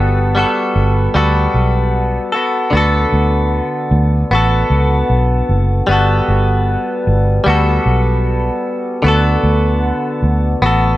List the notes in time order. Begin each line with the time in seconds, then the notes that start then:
Already playing: G1 D3 G3 B3 F#4 A4
0.35 G3 B3 F#4 A4
0.76 G1
1.14 D2 G3 B3 F#4 A4
1.54 B1
2.32 B3 F#4 A4
2.71 D2 D3 B3
2.75 F#4 A4
3.12 D2
3.91 D2
4.31 A1 B3 F#4
4.35 A4
4.70 C#2
5.10 B1
5.49 F#1
5.87 G1 G3 B3
5.91 F#4 A4
6.28 G1
7.07 G1
7.44 D2 G3 B3 F#4
7.50 A4
7.86 B1
9.02 D2 D3 B3 F#4
9.08 A4
9.43 D2
10.23 D2
10.62 A1 B3 F#4
10.66 A4